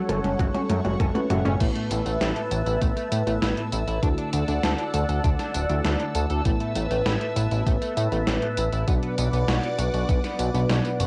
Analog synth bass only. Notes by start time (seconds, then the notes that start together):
0.09 F#1
0.24 F#1
0.39 F#1
0.70 F#2
0.85 F#1
1.00 F#1
1.30 F#1
1.46 F#1
1.61 A1
1.91 A1
2.06 A1
2.21 A1
2.52 A1
2.67 A1
2.82 A1
3.12 A2
3.27 A1
3.42 A1
3.73 A1
3.88 A1
4.03 D2
4.33 D2
4.48 D2
4.64 D2
4.94 D2
5.09 D2
5.24 D2
5.54 D1
5.70 D2
5.85 D2
6.15 D2
6.30 D2
6.45 A1
6.76 A1
6.91 A1
7.06 A1
7.36 A1
7.51 A1
7.67 A1
7.97 A2
8.12 A1
8.27 A1
8.58 A1
8.73 A1
8.88 B1
9.18 B1
9.33 B1
9.48 B1
9.78 B1
9.94 B1
10.09 B1
10.39 B1
10.54 B1
10.70 B1
11.00 F#1